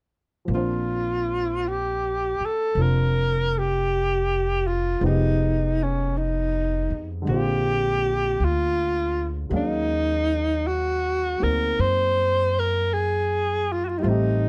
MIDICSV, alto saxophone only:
0, 0, Header, 1, 2, 480
1, 0, Start_track
1, 0, Key_signature, -2, "major"
1, 0, Tempo, 1129944
1, 209, Time_signature, 4, 2, 24, 8
1, 6155, End_track
2, 0, Start_track
2, 0, Title_t, "Alto saxophone"
2, 0, Program_c, 0, 65
2, 232, Note_on_c, 0, 65, 66
2, 715, Note_on_c, 0, 67, 68
2, 722, Note_off_c, 0, 65, 0
2, 1043, Note_on_c, 0, 69, 64
2, 1049, Note_off_c, 0, 67, 0
2, 1196, Note_on_c, 0, 70, 73
2, 1202, Note_off_c, 0, 69, 0
2, 1523, Note_on_c, 0, 67, 70
2, 1530, Note_off_c, 0, 70, 0
2, 1984, Note_on_c, 0, 65, 65
2, 1991, Note_off_c, 0, 67, 0
2, 2132, Note_off_c, 0, 65, 0
2, 2149, Note_on_c, 0, 63, 70
2, 2477, Note_on_c, 0, 61, 62
2, 2483, Note_off_c, 0, 63, 0
2, 2623, Note_on_c, 0, 63, 68
2, 2630, Note_off_c, 0, 61, 0
2, 3020, Note_off_c, 0, 63, 0
2, 3095, Note_on_c, 0, 67, 82
2, 3589, Note_on_c, 0, 65, 72
2, 3596, Note_off_c, 0, 67, 0
2, 3978, Note_off_c, 0, 65, 0
2, 4059, Note_on_c, 0, 63, 77
2, 4534, Note_on_c, 0, 66, 75
2, 4540, Note_off_c, 0, 63, 0
2, 4858, Note_on_c, 0, 70, 81
2, 4864, Note_off_c, 0, 66, 0
2, 5014, Note_on_c, 0, 72, 89
2, 5020, Note_off_c, 0, 70, 0
2, 5350, Note_on_c, 0, 70, 75
2, 5356, Note_off_c, 0, 72, 0
2, 5495, Note_on_c, 0, 68, 72
2, 5501, Note_off_c, 0, 70, 0
2, 5829, Note_on_c, 0, 65, 66
2, 5835, Note_off_c, 0, 68, 0
2, 5885, Note_on_c, 0, 66, 56
2, 5891, Note_off_c, 0, 65, 0
2, 5901, Note_on_c, 0, 65, 58
2, 5907, Note_off_c, 0, 66, 0
2, 5940, Note_on_c, 0, 63, 57
2, 5947, Note_off_c, 0, 65, 0
2, 5959, Note_on_c, 0, 65, 59
2, 5965, Note_off_c, 0, 63, 0
2, 5983, Note_on_c, 0, 63, 66
2, 5989, Note_off_c, 0, 65, 0
2, 6155, Note_off_c, 0, 63, 0
2, 6155, End_track
0, 0, End_of_file